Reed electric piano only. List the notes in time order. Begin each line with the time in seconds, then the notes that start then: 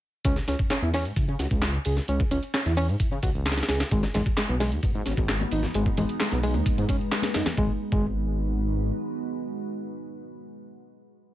0.25 C#4
0.49 C#4
0.72 C#4
0.83 E4
0.94 C#4
1.40 F#4
1.86 G#4
2.09 C#4
2.31 C#4
2.54 C#4
2.66 E4
2.77 C#4
3.23 F#4
3.69 G#4
3.92 G#3
4.15 G#3
4.38 G#3
4.49 B3
4.60 G#3
5.06 C#4
5.52 D#4
5.75 G#3
5.98 G#3
6.21 G#3
6.33 B3
6.44 G#3
6.89 C#4
7.36 D#4
7.58 G#3
7.92 G#3